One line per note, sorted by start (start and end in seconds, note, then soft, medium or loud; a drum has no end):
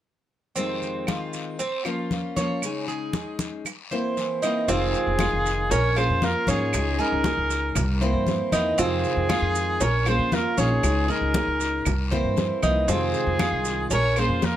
0.56 1.07 F2 medium
0.56 1.07 C3 medium
0.56 1.07 D#3 medium
0.56 1.07 G#3 medium
0.56 1.06 C4 medium
0.56 1.07 C4 medium
0.56 1.08 F4 medium
0.56 high conga soft
0.56 long guiro medium
0.56 maracas medium
0.83 high conga soft
0.83 maracas soft
1.07 1.59 D#3 soft
1.07 1.59 G#3 soft
1.07 1.59 C4 soft
1.07 1.58 F4 medium
1.07 1.59 F4 medium
1.07 high conga medium
1.07 short guiro medium
1.07 claves medium
1.07 maracas soft
1.33 high conga soft
1.33 short guiro medium
1.33 maracas medium
1.59 1.84 C4 medium
1.59 muted steel-string acoustic guitar stroke medium
1.59 high conga soft
1.59 long guiro medium
1.59 maracas medium
1.85 2.11 F3 medium
1.85 2.10 A#3 medium
1.85 2.11 C#4 medium
1.85 2.35 F4 medium
1.85 2.10 F4 medium
1.85 2.10 C5 medium
1.85 high conga soft
1.85 claves medium
1.85 maracas soft
2.11 2.36 A#3 soft
2.11 2.37 C#4 soft
2.11 2.36 F4 medium
2.11 2.36 C5 soft
2.11 high conga medium
2.11 short guiro medium
2.11 maracas soft
2.36 2.63 F3 soft
2.36 2.63 A#3 medium
2.36 2.62 C#4 medium
2.36 2.62 F4 medium
2.36 2.62 C5 medium
2.36 2.87 C#5 medium
2.36 high conga medium
2.36 short guiro medium
2.36 maracas medium
2.62 3.13 C#3 medium
2.62 3.14 G#3 medium
2.62 3.14 C#4 medium
2.62 3.14 D#4 medium
2.62 3.14 G#4 medium
2.62 high conga soft
2.62 long guiro medium
2.62 claves medium
2.62 maracas medium
2.88 3.38 G#4 medium
2.88 high conga soft
2.88 maracas soft
3.13 3.65 G#3 soft
3.13 3.65 C#4 soft
3.13 3.66 D#4 medium
3.13 3.66 G#4 medium
3.13 high conga medium
3.13 short guiro medium
3.13 maracas soft
3.39 high conga medium
3.39 short guiro medium
3.39 maracas medium
3.65 muted steel-string acoustic guitar stroke medium
3.65 high conga soft
3.65 long guiro medium
3.65 claves medium
3.65 maracas medium
3.91 4.17 E3 medium
3.91 4.17 A#3 medium
3.91 4.17 C4 medium
3.91 4.16 E4 medium
3.91 4.41 C5 medium
3.91 high conga soft
3.91 maracas soft
4.17 4.42 E3 soft
4.17 4.43 A#3 medium
4.17 4.43 C4 medium
4.17 4.42 E4 medium
4.17 high conga soft
4.17 short guiro medium
4.17 maracas soft
4.42 4.68 E3 medium
4.42 4.68 A#3 medium
4.42 4.68 C4 medium
4.42 4.68 D#4 medium
4.42 4.68 E4 medium
4.42 high conga soft
4.42 short guiro medium
4.42 claves medium
4.42 maracas medium
4.68 4.93 F1 loud
4.68 5.19 C3 medium
4.68 5.18 D#3 medium
4.68 5.19 G#3 medium
4.68 5.18 C4 medium
4.68 5.19 C4 medium
4.68 5.67 F4 medium
4.68 5.20 F4 medium
4.68 5.73 G#4 loud
4.68 high bongo medium
4.68 high conga soft
4.68 long guiro medium
4.68 maracas medium
4.93 high conga soft
4.93 maracas soft
5.07 5.31 F1 medium
5.19 5.70 D#3 soft
5.19 5.70 G#3 medium
5.19 5.71 C4 medium
5.19 5.70 F4 medium
5.19 5.71 F4 medium
5.19 high bongo medium
5.19 high conga medium
5.19 short guiro medium
5.19 claves medium
5.19 maracas soft
5.33 5.69 F1 medium
5.44 high bongo soft
5.44 high conga soft
5.44 short guiro medium
5.44 maracas medium
5.70 6.08 A#1 medium
5.70 5.96 C#4 medium
5.70 5.97 A#4 medium
5.70 5.99 C#5 loud
5.70 muted steel-string acoustic guitar stroke medium
5.70 high bongo medium
5.70 high conga soft
5.70 long guiro medium
5.70 maracas medium
5.96 6.21 A#3 medium
5.96 6.21 C#4 medium
5.96 6.46 F4 medium
5.96 6.22 F4 medium
5.96 6.23 G#4 medium
5.96 6.22 C5 medium
5.96 6.26 C5 medium
5.96 high bongo soft
5.96 high conga soft
5.96 claves medium
5.96 maracas soft
6.10 6.34 F2 medium
6.22 6.47 A#3 soft
6.22 6.47 C#4 soft
6.22 6.47 F4 medium
6.22 6.49 F4 medium
6.22 6.51 A#4 medium
6.22 6.46 C5 medium
6.22 high bongo soft
6.22 low bongo medium
6.22 high conga medium
6.22 short guiro medium
6.22 maracas soft
6.47 6.72 G#2 medium
6.47 6.73 A#3 medium
6.47 6.73 C#4 medium
6.47 6.99 D#4 medium
6.47 6.73 F4 medium
6.47 7.02 G#4 medium
6.47 6.72 C5 medium
6.47 6.98 C#5 medium
6.47 high bongo soft
6.47 high conga medium
6.47 short guiro medium
6.47 maracas medium
6.73 6.98 C#2 loud
6.73 7.24 C#3 medium
6.73 7.24 G#3 medium
6.73 7.24 C#4 medium
6.73 7.24 D#4 medium
6.73 7.24 G#4 medium
6.73 high bongo medium
6.73 high conga soft
6.73 long guiro medium
6.73 claves medium
6.73 maracas medium
6.99 7.77 D#4 medium
6.99 7.49 G#4 medium
6.99 8.02 A#4 loud
6.99 high conga soft
6.99 maracas soft
7.12 7.37 C#2 medium
7.24 7.75 G#3 medium
7.24 7.75 C#4 medium
7.24 7.75 D#4 medium
7.24 7.76 G#4 medium
7.24 high bongo medium
7.24 high conga loud
7.24 short guiro medium
7.24 maracas soft
7.37 7.74 C#2 medium
7.50 high bongo soft
7.50 high conga soft
7.50 short guiro medium
7.50 maracas medium
7.75 8.12 C2 loud
7.75 muted steel-string acoustic guitar stroke medium
7.75 high bongo medium
7.75 high conga soft
7.75 low conga medium
7.75 long guiro medium
7.75 claves medium
7.75 maracas medium
8.01 8.25 E3 medium
8.01 8.26 A#3 medium
8.01 8.26 C4 medium
8.01 8.26 E4 medium
8.01 8.51 C5 medium
8.01 high bongo soft
8.01 high conga soft
8.01 maracas soft
8.14 8.38 G2 medium
8.26 8.51 E3 medium
8.26 8.52 A#3 medium
8.26 8.52 C4 medium
8.26 8.52 E4 medium
8.26 high bongo soft
8.26 low bongo medium
8.26 high conga medium
8.26 short guiro medium
8.26 maracas soft
8.52 8.77 E2 medium
8.52 8.78 E3 medium
8.52 8.78 A#3 medium
8.52 8.78 C4 medium
8.52 8.78 D#4 medium
8.52 8.77 E4 medium
8.52 high bongo soft
8.52 high conga medium
8.52 short guiro medium
8.52 claves medium
8.52 maracas medium
8.78 9.02 F2 loud
8.78 9.28 C3 medium
8.78 9.28 D#3 medium
8.78 9.28 G#3 medium
8.78 9.28 C4 medium
8.78 9.29 C4 medium
8.78 9.77 F4 medium
8.78 9.29 F4 medium
8.78 9.83 G#4 loud
8.78 high bongo medium
8.78 high conga soft
8.78 long guiro medium
8.78 maracas medium
9.04 high conga soft
9.04 maracas soft
9.16 9.41 F2 medium
9.29 9.80 D#3 soft
9.29 9.80 G#3 medium
9.29 9.80 C4 medium
9.29 9.79 F4 medium
9.29 9.80 F4 medium
9.29 high bongo medium
9.29 high conga medium
9.29 short guiro medium
9.29 claves medium
9.29 maracas soft
9.42 9.79 F2 medium
9.55 high bongo soft
9.55 high conga soft
9.55 short guiro medium
9.55 maracas medium
9.80 10.17 A#1 loud
9.80 10.05 C#4 medium
9.80 10.07 A#4 medium
9.80 10.10 C#5 loud
9.80 muted steel-string acoustic guitar stroke medium
9.80 high bongo medium
9.80 high conga soft
9.80 long guiro medium
9.80 maracas medium
10.06 10.31 A#3 medium
10.06 10.32 C#4 medium
10.06 10.56 F4 medium
10.06 10.32 F4 medium
10.06 10.32 G#4 medium
10.06 10.31 C5 medium
10.06 10.35 C5 loud
10.06 high bongo soft
10.06 high conga soft
10.06 claves medium
10.06 maracas soft
10.19 10.43 F2 medium
10.32 10.57 A#3 medium
10.32 10.57 C#4 medium
10.32 10.59 F4 medium
10.32 10.57 F4 medium
10.32 10.61 A#4 medium
10.32 10.56 C5 medium
10.32 high bongo soft
10.32 low bongo medium
10.32 high conga medium
10.32 short guiro medium
10.32 maracas soft
10.57 10.82 A#1 medium
10.57 10.83 A#3 medium
10.57 10.83 C#4 medium
10.57 11.09 D#4 medium
10.57 10.82 F4 medium
10.57 11.12 G#4 loud
10.57 10.82 C5 medium
10.57 11.07 C#5 medium
10.57 high bongo soft
10.57 high conga medium
10.57 short guiro medium
10.57 maracas medium
10.83 11.08 C#2 loud
10.83 11.33 C#3 medium
10.83 11.34 G#3 medium
10.83 11.34 C#4 medium
10.83 11.34 D#4 medium
10.83 11.34 G#4 medium
10.83 high bongo medium
10.83 high conga soft
10.83 long guiro medium
10.83 claves medium
10.83 maracas medium
11.08 11.86 D#4 medium
11.08 11.58 G#4 medium
11.08 12.12 A#4 medium
11.08 high conga soft
11.08 maracas soft
11.21 11.46 C#2 medium
11.34 11.85 G#3 soft
11.34 11.85 C#4 medium
11.34 11.85 D#4 medium
11.34 11.85 G#4 soft
11.34 high bongo medium
11.34 high conga loud
11.34 short guiro medium
11.34 maracas soft
11.47 11.84 C#2 medium
11.60 high bongo soft
11.60 high conga soft
11.60 short guiro medium
11.60 maracas medium
11.85 12.22 C2 medium
11.85 muted steel-string acoustic guitar stroke medium
11.85 high bongo medium
11.85 high conga soft
11.85 low conga medium
11.85 long guiro medium
11.85 claves medium
11.85 maracas medium
12.11 12.35 E3 medium
12.11 12.36 A#3 medium
12.11 12.36 C4 medium
12.11 12.36 E4 medium
12.11 12.61 C5 medium
12.11 high bongo soft
12.11 high conga soft
12.11 low conga medium
12.11 maracas soft
12.24 12.48 G2 medium
12.37 12.61 E3 medium
12.37 12.62 A#3 medium
12.37 12.62 C4 soft
12.37 12.61 E4 medium
12.37 high bongo soft
12.37 low bongo medium
12.37 high conga medium
12.37 short guiro medium
12.37 maracas soft
12.62 12.87 C2 medium
12.62 12.88 E3 medium
12.62 12.88 A#3 medium
12.62 12.87 C4 medium
12.62 12.88 D#4 medium
12.62 12.87 E4 medium
12.62 high bongo soft
12.62 high conga medium
12.62 short guiro medium
12.62 claves medium
12.62 maracas medium
12.88 13.12 F2 loud
12.88 13.39 C3 medium
12.88 13.39 D#3 medium
12.88 13.39 G#3 medium
12.88 13.38 C4 medium
12.88 13.39 C4 medium
12.88 13.87 F4 medium
12.88 13.39 F4 medium
12.88 13.87 G#4 loud
12.88 high bongo medium
12.88 high conga soft
12.88 long guiro medium
12.88 maracas medium
13.14 high conga soft
13.14 maracas soft
13.27 13.51 F2 medium
13.39 13.90 D#3 soft
13.39 13.90 G#3 medium
13.39 13.90 C4 soft
13.39 13.89 F4 medium
13.39 13.91 F4 medium
13.39 high bongo medium
13.39 high conga loud
13.39 short guiro medium
13.39 claves medium
13.39 maracas soft
13.52 13.89 C2 medium
13.65 high bongo soft
13.65 high conga soft
13.65 short guiro medium
13.65 maracas medium
13.90 14.27 A#1 medium
13.90 14.16 C#4 medium
13.90 14.18 A#4 medium
13.90 14.21 C#5 loud
13.90 muted steel-string acoustic guitar stroke medium
13.90 high bongo medium
13.90 high conga soft
13.90 long guiro medium
13.90 maracas medium
14.16 14.41 A#3 medium
14.16 14.42 C#4 medium
14.16 14.57 F4 medium
14.16 14.42 F4 medium
14.16 14.45 G#4 medium
14.16 14.41 C5 medium
14.16 14.46 C5 loud
14.16 high bongo soft
14.16 high conga soft
14.16 claves medium
14.16 maracas soft
14.29 14.53 F2 medium
14.42 14.57 A#3 medium
14.42 14.57 C#4 medium
14.42 14.57 F4 medium
14.42 14.57 A#4 medium
14.42 14.57 C5 medium
14.42 high bongo soft
14.42 low bongo medium
14.42 high conga medium
14.42 short guiro medium
14.42 maracas soft